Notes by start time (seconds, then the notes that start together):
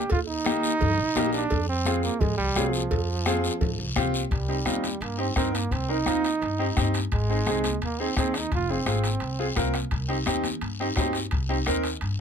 Already playing: G4
0.10 D#2 F4, bombo low, cowbell, high conga, long guiro
0.28 D#4
0.45 A#3 D#4 G4, bombo rim, cowbell, high conga, short guiro
0.63 short guiro
0.81 G2, bombo low, cowbell, high conga, low conga, long guiro
0.98 A#1
1.16 A#1 A#3 D#4 G4, bombo rim, cowbell, high conga, low timbale, short guiro
1.33 D4, short guiro
1.50 F2, bombo low, cowbell, high conga, long guiro
1.69 C4
1.85 C4 F4 G#4, bombo rim, cowbell, high conga, short guiro
2.03 A#3, short guiro
2.20 G#2 G#3, bombo low, cowbell, high conga, low conga, long guiro
2.37 C2 G3
2.55 C2 C4 F4 G#4, bombo rim, cowbell, high conga, low timbale, short guiro
2.72 F3, short guiro
2.91 F2, bombo low, cowbell, high conga, long guiro
3.26 C4 F4 G#4, bombo rim, cowbell, high conga, short guiro
3.44 short guiro
3.61 G#2, bombo low, cowbell, high conga, low conga, long guiro
3.79 C2
3.96 C2 C4 F4 G4, bombo low, bombo rim, cowbell, high conga, low conga, short guiro
4.14 short guiro
4.31 C2 G3, bombo low, high timbale, long guiro
4.49 C4 D#4 G4
4.66 D#2 C4 D#4 F4, bombo rim, high conga, high timbale, short guiro
4.84 high conga, high timbale, short guiro
5.01 G2 A#3, high timbale, long guiro
5.18 C4 D#4 G4
5.36 G2 C4 D#4 A#4, bombo low, bombo rim, high conga, high timbale, short guiro
5.55 A#3, high timbale, short guiro
5.71 C2 C4, bombo low, high timbale, long guiro
5.89 C4 D#4 A#4
6.06 D#2 C4 D#4 F4, bombo rim, high conga, high timbale, short guiro
6.24 high timbale, short guiro
6.41 G2, high timbale, long guiro
6.59 C4 D#4 G4
6.77 G2 C4 D#4 G4, bombo low, bombo rim, high conga, high timbale, short guiro
6.94 high timbale, short guiro
7.12 G#1 G#3, bombo low, high timbale, long guiro
7.30 C4 D#4 G#4
7.46 C2 C4 D#4 G#4, bombo rim, high conga, high timbale, short guiro
7.64 high conga, high timbale, short guiro
7.82 D#2 A#3, high timbale, long guiro
8.00 C4 D#4 G#4
8.16 D#2 C4 D#4 G#4, bombo low, bombo rim, high conga, high timbale, short guiro
8.34 D#4, bombo rim, high timbale, short guiro
8.52 F1 F4, bombo low, high timbale, long guiro
8.70 C4 F4 G#4
8.86 G#1 C4 F4 G#4, bombo rim, high conga, high timbale, short guiro
9.04 high timbale, short guiro
9.20 C2, high timbale, long guiro
9.39 C4 F4 G#4
9.56 C2 C4 F4 A#4, bombo low, bombo rim, high conga, high timbale, short guiro
9.74 bombo rim, high timbale, short guiro
9.91 C2, bombo low, high timbale, long guiro
10.08 C4 D#4 G4
10.26 D#2 C4 D#4 G4, bombo rim, high conga, high timbale, short guiro
10.44 high conga, high timbale, short guiro
10.61 G2, high timbale, long guiro
10.80 C4 D#4 G4
10.96 G2 C4 D#4 G4, bombo low, bombo rim, high conga, high timbale, low timbale, short guiro
11.13 high timbale, short guiro
11.31 C2, bombo low, high timbale, long guiro
11.49 C4 D#4 G4
11.66 D#2 C4 D#4 A#4, bombo rim, high conga, high timbale, short guiro
11.84 high timbale, short guiro
12.01 G2, high timbale, long guiro